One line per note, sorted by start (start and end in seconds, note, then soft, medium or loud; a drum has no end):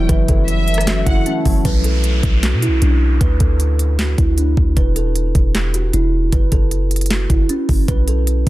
0.00 0.14 F#3 medium
0.00 0.14 G3 loud
0.00 1.25 A3 medium
0.00 2.61 B3 medium
0.00 0.75 D4 medium
0.00 0.87 E4 medium
0.09 0.28 F#1 loud
0.09 1.70 E3 medium
0.09 1.63 F#3 medium
0.09 1.63 C#4 medium
0.09 1.63 E4 medium
0.09 1.63 A4 medium
0.09 0.27 B4 loud
0.09 kick loud
0.09 closed hi-hat medium
0.28 1.03 F#1 loud
0.28 1.44 F#3 medium
0.28 0.84 A4 medium
0.28 kick loud
0.28 closed hi-hat medium
0.48 1.03 E5 medium
0.48 closed hi-hat medium
0.68 closed hi-hat soft
0.74 cross-stick loud
0.74 closed hi-hat medium
0.81 closed hi-hat medium
0.87 3.48 E4 medium
0.87 1.05 F#4 medium
0.87 snare loud
0.87 clap medium
0.87 closed hi-hat medium
1.06 1.25 F#1 loud
1.06 3.97 C#4 medium
1.06 1.24 E4 medium
1.06 1.25 F#5 medium
1.06 kick loud
1.06 closed hi-hat medium
1.26 4.59 A3 medium
1.26 1.63 C#4 medium
1.26 closed hi-hat medium
1.45 1.64 F#1 loud
1.45 1.70 F#3 medium
1.45 kick medium
1.45 open hi-hat medium
1.65 2.21 B1 loud
1.65 1.82 B4 loud
1.65 kick loud
1.65 closed hi-hat medium
1.65 downlifter medium
1.84 2.39 A4 medium
1.84 closed hi-hat medium
2.04 closed hi-hat medium
2.23 2.55 B1 loud
2.23 kick loud
2.23 closed hi-hat medium
2.43 2.60 F#4 medium
2.43 snare loud
2.43 clap medium
2.43 closed hi-hat medium
2.53 2.69 B2 loud
2.62 2.80 E4 medium
2.62 closed hi-hat medium
2.68 2.81 B1 loud
2.82 3.19 B1 loud
2.82 3.19 D4 medium
2.82 closed hi-hat medium
3.21 3.40 D2 loud
3.21 3.38 B4 loud
3.21 kick loud
3.21 closed hi-hat medium
3.40 4.15 D2 loud
3.40 3.95 A4 medium
3.40 kick medium
3.40 closed hi-hat medium
3.60 closed hi-hat medium
3.79 closed hi-hat medium
3.99 4.16 F#4 medium
3.99 snare loud
3.99 clap loud
3.99 closed hi-hat medium
4.18 4.56 D2 loud
4.18 4.36 E4 medium
4.18 kick loud
4.18 closed hi-hat medium
4.38 4.74 D4 medium
4.38 closed hi-hat medium
4.57 4.76 D2 loud
4.57 kick medium
4.77 5.33 E1 loud
4.77 4.94 B4 medium
4.77 kick loud
4.77 closed hi-hat medium
4.96 5.51 A4 medium
4.96 closed hi-hat medium
5.16 closed hi-hat medium
5.35 5.91 E1 loud
5.35 kick loud
5.35 closed hi-hat medium
5.55 5.72 G4 medium
5.55 snare loud
5.55 clap medium
5.55 closed hi-hat medium
5.74 5.92 F#4 medium
5.74 closed hi-hat medium
5.93 6.31 E1 loud
5.93 6.30 E4 medium
5.93 closed hi-hat medium
6.32 6.51 F#1 loud
6.32 6.50 B4 loud
6.32 kick loud
6.32 closed hi-hat medium
6.52 7.27 F#1 loud
6.52 7.07 A4 medium
6.52 kick medium
6.52 closed hi-hat medium
6.71 closed hi-hat medium
6.91 closed hi-hat medium
6.96 closed hi-hat medium
7.01 closed hi-hat medium
7.06 closed hi-hat medium
7.10 7.28 F#4 medium
7.10 snare loud
7.10 clap medium
7.10 closed hi-hat medium
7.30 7.49 F#1 loud
7.30 7.47 E4 medium
7.30 kick loud
7.30 closed hi-hat medium
7.49 7.86 C#4 medium
7.49 closed hi-hat medium
7.69 7.88 F#1 loud
7.69 kick medium
7.69 open hi-hat medium
7.88 8.44 B1 loud
7.88 8.06 B4 loud
7.88 kick loud
7.88 closed hi-hat medium
8.08 8.49 A4 medium
8.08 closed hi-hat medium
8.27 closed hi-hat medium